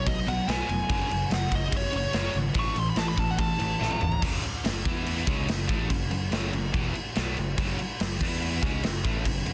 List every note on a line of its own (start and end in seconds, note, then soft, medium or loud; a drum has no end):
0.06 0.20 B1 medium
0.06 0.25 B2 medium
0.06 0.25 F#3 medium
0.06 0.27 D#5 loud
0.06 kick loud
0.06 crash medium
0.27 0.40 B1 loud
0.27 0.46 B2 medium
0.27 0.46 F#3 medium
0.27 0.50 F#5 medium
0.27 crash medium
0.48 0.61 B1 loud
0.48 0.67 B2 medium
0.48 0.68 F#3 medium
0.48 0.68 B3 loud
0.48 1.30 G#5 loud
0.48 snare loud
0.48 crash medium
0.69 0.82 F1 medium
0.69 0.87 B2 medium
0.69 0.88 F#3 medium
0.69 crash medium
0.89 1.03 F#1 loud
0.89 1.09 F#2 medium
0.89 1.09 C#3 loud
0.89 1.09 F#3 loud
0.89 kick loud
0.89 crash medium
1.10 1.24 F#1 medium
1.10 1.29 F#2 medium
1.10 1.29 C#3 medium
1.10 crash medium
1.30 1.45 F#1 medium
1.30 1.50 F#2 medium
1.30 1.50 C#3 medium
1.30 1.53 F#5 medium
1.30 snare loud
1.30 crash medium
1.51 1.65 F#1 medium
1.51 1.70 F#2 medium
1.51 1.71 C#3 medium
1.51 kick medium
1.51 crash medium
1.55 1.74 D#5 loud
1.72 1.86 F#1 loud
1.72 1.91 F#2 medium
1.72 1.91 C#3 medium
1.72 kick loud
1.72 crash medium
1.77 1.95 C#5 loud
1.92 2.07 F#1 medium
1.92 2.12 F#2 medium
1.92 2.12 C#3 medium
1.92 crash medium
1.97 2.36 C#5 loud
2.13 2.28 F#1 medium
2.13 2.33 F#2 loud
2.13 2.33 C#3 loud
2.13 2.34 F#3 loud
2.13 snare loud
2.13 crash medium
2.34 2.49 G#1 medium
2.34 2.54 F#2 medium
2.34 2.54 C#3 medium
2.34 crash medium
2.54 2.69 A1 loud
2.54 2.74 A2 loud
2.54 2.75 E3 loud
2.54 2.76 A3 loud
2.54 kick loud
2.54 crash medium
2.59 2.78 C#6 loud
2.75 2.90 A1 medium
2.75 2.95 A2 medium
2.75 2.95 E3 medium
2.75 2.88 C6 loud
2.75 crash medium
2.89 2.98 B5 medium
2.96 3.11 A1 medium
2.96 3.15 A2 medium
2.96 3.15 E3 medium
2.96 3.08 A5 loud
2.96 snare loud
2.96 crash medium
3.08 3.19 B5 loud
3.17 3.31 A1 medium
3.17 3.37 A2 medium
3.17 3.37 E3 medium
3.17 3.31 A5 loud
3.17 kick medium
3.17 crash medium
3.31 3.39 F#5 medium
3.38 3.52 A1 loud
3.38 3.58 A2 medium
3.38 3.58 E3 medium
3.38 4.21 A5 loud
3.38 kick loud
3.38 crash medium
3.59 3.74 A1 loud
3.59 3.79 A2 medium
3.59 3.79 E3 medium
3.59 crash medium
3.80 3.95 A1 loud
3.80 3.99 A2 loud
3.80 4.00 E3 loud
3.80 4.01 A3 loud
3.80 snare medium
3.91 high tom medium
4.01 4.15 G#1 medium
4.01 4.20 A2 medium
4.01 4.21 E3 medium
4.01 mid tom medium
4.12 floor tom medium
4.22 4.42 F#1 medium
4.22 4.42 F#2 medium
4.22 4.43 C#3 loud
4.22 4.43 F#3 loud
4.22 kick loud
4.22 crash loud
4.22 crash medium
4.43 muted picked electric bass stroke soft
4.43 muted distorted electric guitar stroke medium
4.43 crash medium
4.64 4.85 F#1 medium
4.64 4.81 F#2 medium
4.64 4.82 C#3 medium
4.64 snare loud
4.64 crash medium
4.85 5.25 E2 medium
4.85 5.27 E3 medium
4.85 5.27 B3 medium
4.85 5.27 E4 loud
4.85 kick loud
4.85 snare soft
4.85 crash medium
5.06 crash medium
5.27 5.47 C#2 loud
5.27 5.48 C#3 medium
5.27 5.48 G#3 loud
5.27 5.48 C#4 loud
5.27 kick loud
5.27 crash medium
5.48 5.68 F#1 medium
5.48 5.65 F#2 medium
5.48 5.66 C#3 medium
5.48 snare loud
5.48 crash medium
5.68 5.89 A1 loud
5.68 5.89 A2 medium
5.68 5.89 E3 medium
5.68 5.90 A3 loud
5.68 kick loud
5.68 crash medium
5.90 6.10 F#1 medium
5.90 6.07 F#2 medium
5.90 6.07 C#3 medium
5.90 kick loud
5.90 crash medium
6.10 6.30 F#1 medium
6.10 6.28 F#2 medium
6.10 6.28 C#3 medium
6.10 crash medium
6.31 6.51 F#1 medium
6.31 6.52 F#2 medium
6.31 6.52 C#3 loud
6.31 6.53 F#3 loud
6.31 snare loud
6.31 crash medium
6.53 6.72 F#1 medium
6.53 6.70 F#2 medium
6.53 6.70 C#3 medium
6.53 crash medium
6.72 6.93 E1 loud
6.72 6.93 E2 medium
6.72 6.94 B2 loud
6.72 6.94 E3 loud
6.72 kick loud
6.72 crash medium
6.94 muted distorted electric guitar stroke medium
6.94 muted picked electric bass stroke soft
6.94 crash medium
7.15 7.36 B1 medium
7.15 7.36 B2 medium
7.15 7.36 F#3 loud
7.15 7.37 B3 loud
7.15 snare loud
7.15 crash medium
7.37 7.57 F#1 medium
7.37 7.53 F#2 medium
7.37 7.54 C#3 medium
7.37 crash medium
7.57 7.77 F#1 medium
7.57 7.78 F#2 loud
7.57 7.78 C#3 loud
7.57 7.79 F#3 loud
7.57 kick loud
7.57 crash medium
7.79 muted distorted electric guitar stroke medium
7.79 muted picked electric bass stroke soft
7.79 crash medium
8.00 8.20 F#1 medium
8.00 8.17 F#2 medium
8.00 8.21 C#3 medium
8.00 snare loud
8.00 crash medium
8.21 8.59 E2 loud
8.21 8.61 E3 medium
8.21 8.62 B3 loud
8.21 8.62 E4 loud
8.21 kick loud
8.21 crash loud
8.42 crash medium
8.62 8.82 C#2 loud
8.62 8.82 C#3 loud
8.62 8.83 G#3 medium
8.62 8.83 C#4 loud
8.62 kick loud
8.62 crash medium
8.83 9.03 F#1 medium
8.83 9.00 F#2 medium
8.83 9.00 C#3 medium
8.83 snare loud
8.83 crash medium
9.04 9.24 A1 medium
9.04 9.24 A2 medium
9.04 9.25 E3 loud
9.04 9.25 A3 loud
9.04 kick loud
9.04 crash medium
9.25 9.44 F#1 medium
9.25 9.42 F#2 medium
9.25 9.42 C#3 medium
9.25 kick medium
9.25 crash medium
9.46 9.53 F#1 medium
9.46 9.53 F#2 medium
9.46 9.53 C#3 medium
9.46 crash medium